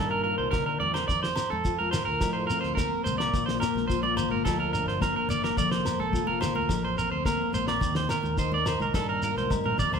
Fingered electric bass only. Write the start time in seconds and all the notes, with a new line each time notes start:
Already playing: G2
0.39 C2
0.80 F2
1.09 F2
1.52 F2
2.07 D2
2.21 A2
2.64 D2
3.06 C2
3.34 A#1
3.75 A#1
4.31 G1
4.45 D2
4.86 G1
5.29 F#1
5.57 F1
5.99 F1
6.56 D2
6.70 A1
7.12 D2
7.54 A#1
7.81 D#2
8.24 D#2
8.80 C2
8.94 G2
9.37 C2
9.50 G2
9.79 F2